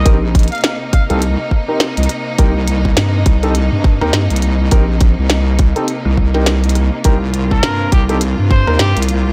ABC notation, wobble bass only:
X:1
M:4/4
L:1/16
Q:"Swing 16ths" 1/4=103
K:Cm
V:1 name="Wobble bass" clef=bass
B,,,3 z4 C,,2 z4 C,, z2 | C,,4 G,,2 C,,3 G,,2 E,, G,, C,,3 | B,,,3 C,,4 z2 C,,6 z | C,,4 G,,2 C,,3 G,,2 E,, G,, C,,3 |]